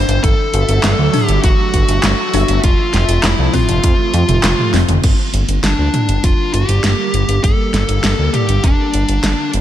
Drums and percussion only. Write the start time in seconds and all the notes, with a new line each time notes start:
0.09 closed hi-hat
0.24 kick, closed hi-hat
0.54 closed hi-hat
0.69 closed hi-hat
0.84 snare, clap, closed hi-hat
1.14 mid tom, open hi-hat
1.29 closed hi-hat
1.44 kick, closed hi-hat
1.74 kick, closed hi-hat
1.89 closed hi-hat
2.03 snare, clap, closed hi-hat
2.34 open hi-hat
2.48 closed hi-hat
2.64 kick, closed hi-hat
2.94 snare, closed hi-hat
3.09 closed hi-hat
3.24 snare, clap, closed hi-hat
3.54 kick, mid tom, open hi-hat
3.69 closed hi-hat
3.84 kick, closed hi-hat
4.14 closed hi-hat
4.29 closed hi-hat, mid tom
4.44 snare, clap, closed hi-hat
4.59 mid tom
4.74 snare, open hi-hat
4.89 closed hi-hat, mid tom
5.04 kick, closed hi-hat, crash
5.34 closed hi-hat
5.49 closed hi-hat
5.64 snare, closed hi-hat
5.94 closed hi-hat, mid tom
6.09 closed hi-hat
6.24 kick, closed hi-hat
6.54 closed hi-hat
6.69 closed hi-hat
6.84 snare, closed hi-hat
7.14 closed hi-hat
7.29 closed hi-hat
7.44 kick, closed hi-hat
7.74 snare, closed hi-hat
7.89 closed hi-hat
8.04 snare, closed hi-hat
8.34 closed hi-hat, mid tom
8.49 closed hi-hat
8.64 kick, closed hi-hat
8.94 closed hi-hat
9.09 closed hi-hat
9.24 snare, closed hi-hat
9.54 closed hi-hat